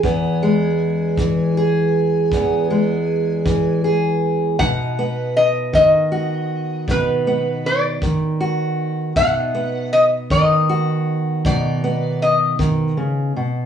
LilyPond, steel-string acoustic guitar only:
\new Staff \with { instrumentName = "Steel-string acoustic guitar" } { \clef bass \time 12/8 \key b \mixolydian \tempo 4. = 53 << { b8 gis4. gis'4 b8 gis4. gis'4 | dis'8 b4. fis'4 dis'8 b4. fis'4 | dis'8 b4. fis'4 dis'8 b2~ b8 | } \\ { e,4. e4. e,4. e4. | b,4. dis4. b,4. dis4. | b,4. dis4. b,4. dis8 cis8 b,8 | } >> }